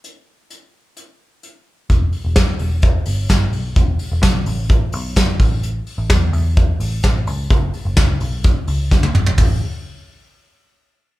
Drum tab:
HH |x---x---x---x---|x-o-x-o-x-o-x-o-|x-o-x-o-x-o-x-o-|x-o-x-o-x-o-x-o-|
SD |----------------|----o-------o---|----o-------o---|----o-------o---|
T1 |----------------|----------------|----------------|----------------|
T2 |----------------|----------------|----------------|----------------|
FT |----------------|----------------|----------------|----------------|
BD |----------------|o---o---o---o---|o---o---o---o-o-|----o---o---o---|

HH |x-o-x-o-x-o-----|o---------------|
SD |----o-------o---|----------------|
T1 |-------------o--|----------------|
T2 |--------------o-|----------------|
FT |---------------o|o---------------|
BD |o---o---o---o---|o---------------|